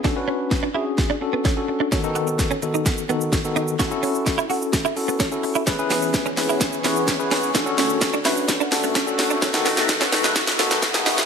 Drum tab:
HH |----------------|x-x-x-x-x-x-x-x-|x-o-x-o-x-o-x-o-|x-o-x-o-x-o-x-o-|
SH |----------------|xxxxxxxxxxxxxxxx|xxxxxxxxxxxxxxxx|xxxxxxxxxxxxxxxx|
SD |o---o---o---o---|o---o---o---o---|o---o---o---o---|o-o-o-o-o-o-o-o-|
BD |o---o---o---o---|o---o---o---o---|o---o---o---o---|o---o---o---o---|

HH |x-o-x-o-x-o-x-o-|x-o-x-o-x-o-x-o-|
SH |xxxxxxxxxxxxxxxx|xxxxxxxxxxxxxxxx|
SD |o-o-o-o-o-o-o-o-|oooooooooooooooo|
BD |o---o---o---o---|o---o---o---o---|